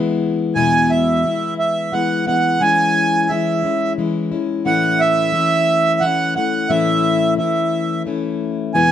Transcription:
Already playing: E3 G#3 B3 E4
0.55 E2 B2 E3 G#3 B3 E4 G#5
0.90 E5
1.24 E3 G#3 B3 E4
1.59 E5
1.92 E3 G#3 B3 E4 F#5
2.27 E3 G#3 B3 E4 F#5
2.60 E3 G#3 C#4 E4 G#5
3.29 E3 G#3 C#4 E4 E5
3.63 G#3 C#4 E4
3.98 E3 G#3 C#4 E4
4.32 G#3 C#4 E4
4.65 A2 E3 A3 C#4 E4 F#5
5.00 E5
5.32 E3 A3 C#4 E4
6.01 E3 A3 C#4 E4 F#5
6.36 A3 C#4 E4 F#5
6.69 A2 E3 A3 C#4 E4 E5
7.38 E3 A3 C#4 E4 E5
8.06 E3 A3 C#4 E4
8.74 E2 B2 E3 G#3 B3 E4 G#5

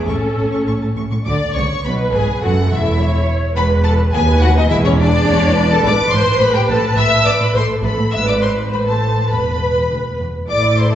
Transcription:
0.07 A1 A2 C#4 A4 C#6
0.36 A1 A2 A5
0.52 A2 C#6
0.66 A1 A2 C#6
0.81 A2 A5
0.95 A1 A2 C#6
1.11 A2 C#6
1.25 D2 D3 D5 D6
1.54 C#2 C#3 C#5 C#6
1.84 B1 B2 B4 B5
2.13 G#1 G#2 G#4 G#5
2.41 F#1 F#2 F#4 A4 F#5
2.71 E1 E2 E4 E5
2.99 C#5
3.56 E1 E2 B4 B5
3.84 A4 A5
4.12 D#2 G#4 B4 G#5
4.40 F#4 F#5
4.56 D#4 D#5
4.69 E1 E2 E4 G#4 E5
4.84 C#4 C#5
4.98 D4 D5
5.26 E1 E2 C#5
5.56 B4
5.70 A4 A5
5.83 G#1 G#2 D5 D6
6.10 G#1 G#2 C5 C6
6.25 G#2
6.39 A1 A2 B4 B5
6.53 A2 G4 G5
6.68 A1 A2 A4 A5
6.82 A2
6.97 A1 A2 E5 E6
7.25 A1 A2 D5 D6
7.40 A2 B4 B5
7.54 A1 A2 A4 C5 C6
7.68 A2
7.83 A1 A2 B4 B5
7.97 A2
8.12 G#1 G#2 B4 E5 E6
8.27 D5 D6
8.41 C5 C6
8.70 A1 A2 B4 C5 B5
8.85 A4 A5
9.29 E1 E2 B4 B5
9.89 D2
10.19 E2
10.49 A1 A2 A3 E4 D5 D6
10.77 C5 C6
10.92 A4 A5

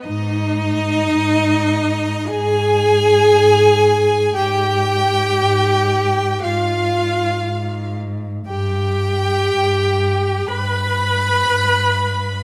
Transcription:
0.05 G#2 D#4 D#5
1.13 G#2
2.27 G#2 G#4 G#5
3.33 G#2
4.36 G#2 G4 G5
5.41 G#2
6.43 G#2 F4 F5
7.46 G#2
8.47 G2 G4 G5
9.49 G2
10.48 G2 B4 B5
11.48 G2

